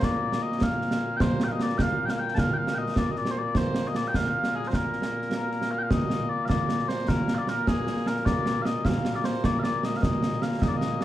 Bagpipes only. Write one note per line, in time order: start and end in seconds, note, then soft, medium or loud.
0.00 11.05 A#2 medium
0.00 11.05 A#3 medium
0.00 0.42 D5 loud
0.42 0.63 D#5 medium
0.63 1.17 F5 loud
1.17 1.21 G5 loud
1.21 1.44 C5 loud
1.44 1.48 G5 medium
1.48 1.62 D#5 medium
1.48 1.52 F5 medium
1.62 1.78 D5 medium
1.78 2.05 F5 medium
1.78 1.81 G5 medium
2.05 2.10 G5 medium
2.10 2.19 F5 medium
2.19 2.34 G5 medium
2.34 2.39 A5 loud
2.39 2.53 F5 loud
2.53 2.75 F5 medium
2.53 2.57 G5 medium
2.75 2.98 D#5 medium
2.75 2.78 G5 medium
2.98 3.11 D5 medium
3.11 3.17 D#5 medium
3.17 3.31 D5 medium
3.31 3.38 C5 medium
3.38 3.57 D5 medium
3.57 3.87 C5 loud
3.87 3.96 D#5 medium
3.96 4.08 D5 medium
4.08 4.15 G5 medium
4.15 4.55 F5 loud
4.55 4.68 G#4 medium
4.68 4.75 C5 medium
4.75 5.71 A#4 medium
5.71 5.78 F5 loud
5.78 5.83 G5 medium
5.83 5.91 F5 medium
5.91 6.29 D#5 loud
6.29 6.45 D5 loud
6.45 6.88 D5 medium
6.45 6.49 F5 medium
6.88 7.08 C5 medium
7.08 7.35 A#4 loud
7.35 7.49 D5 medium
7.35 7.38 F5 medium
7.49 7.68 A#4 loud
7.68 8.07 G#4 medium
8.07 8.26 A#4 medium
8.26 8.62 D5 loud
8.62 8.85 D#5 loud
8.62 8.65 F5 loud
8.85 9.16 F5 loud
9.16 9.25 D5 medium
9.25 9.45 C5 medium
9.45 9.59 D5 loud
9.59 9.84 D5 loud
9.59 9.63 F5 loud
9.84 9.97 D#5 loud
9.97 10.02 F5 medium
10.02 10.42 D#5 loud
10.42 10.62 F5 loud
10.62 10.68 D#5 loud
10.68 10.76 D5 medium
10.76 11.02 D#5 loud